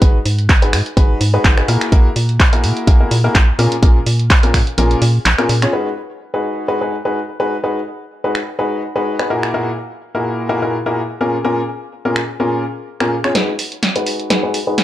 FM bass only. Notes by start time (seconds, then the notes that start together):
0.02 G#1
0.26 G#2
0.49 G#1
0.73 G#2
0.97 G#1
1.21 G#2
1.45 G#1
1.68 A#2
1.92 A#1
2.16 A#2
2.40 A#1
2.64 A#2
2.87 A#1
3.11 A#2
3.35 A#1
3.59 A#2
3.83 A#1
4.06 A#2
4.30 A#1
4.54 A#2
4.78 A#1
5.02 A#2
5.25 A#1
5.49 A#2